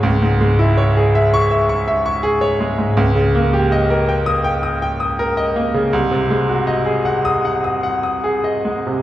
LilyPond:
\new Staff \with { instrumentName = "Grand piano" } { \time 4/4 \key gis \phrygian \tempo 4 = 81 << { r4. r16 cis'''8 r4. r16 | r4. r16 dis'''8 r4. r16 | r4. r16 dis'''8 r4. r16 | } \\ { cis,16 gis,16 gis16 e'16 cis''16 gis'16 e''8 e''16 cis'''16 e''16 cis'''16 gis'16 cis''16 gis16 gis,16 | cis,16 cis16 ais16 g'16 dis''16 ais'16 g''8 g''16 dis'''16 g''16 dis'''16 ais'16 dis''16 ais16 cis16 | bis,,16 bis,16 gis16 fis'16 dis''16 gis'16 fis''8 fis''16 dis'''16 fis''16 dis'''16 gis'16 dis''16 gis16 bis,16 | } >> }